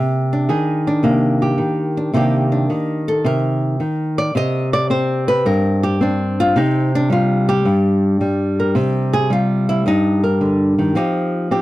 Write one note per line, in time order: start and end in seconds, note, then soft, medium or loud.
0.00 0.50 C3 medium
0.00 1.02 A#3 soft
0.00 0.32 D4 soft
0.00 0.33 C5 medium
0.33 0.86 D4 soft
0.49 1.57 D#3 medium
0.49 1.42 G#4 medium
0.87 1.96 D4 medium
1.03 1.59 C3 medium
1.03 2.13 A#3 medium
1.42 2.15 G4 soft
1.58 2.12 D#3 medium
1.97 2.15 D4 medium
2.14 2.69 C3 medium
2.14 2.69 D#3 soft
2.14 6.38 A#3 soft
2.14 2.52 D4 soft
2.14 3.26 G4 soft
2.52 3.08 D4 soft
2.70 3.79 D#3 medium
3.08 3.25 A4 medium
3.24 3.80 C3 medium
3.24 4.18 A#4 medium
3.80 4.33 D#3 medium
4.18 4.35 D5 medium
4.35 5.45 C3 medium
4.35 4.73 D#5 medium
4.73 4.90 D5 medium
4.90 6.00 C4 medium
4.90 5.28 C5 medium
5.28 5.45 B4 medium
5.46 6.55 G2 medium
5.46 5.83 A#4 medium
5.83 6.00 G4 medium
6.01 6.98 C4 medium
6.01 6.39 D4 medium
6.40 6.56 F4 medium
6.56 7.66 C3 medium
6.56 6.94 D#4 medium
6.95 7.11 D4 medium
7.10 8.20 G3 medium
7.10 7.49 F4 medium
7.49 8.03 G4 medium
7.65 8.75 G2 medium
8.21 9.16 G3 medium
8.60 8.74 A#4 soft
8.75 9.85 C3 medium
9.13 9.30 G#4 medium
9.30 10.95 G3 medium
9.30 9.69 F4 medium
9.69 9.86 E4 medium
9.86 10.95 G2 medium
9.86 10.24 D#4 medium
10.24 10.93 A#4 soft
10.41 10.78 D3 medium
10.78 10.95 D#3 medium
10.95 11.62 F3 medium
10.95 11.51 C4 soft
10.95 11.62 D#4 medium
10.95 11.51 G4 soft
11.51 11.62 C4 medium
11.51 11.62 G4 soft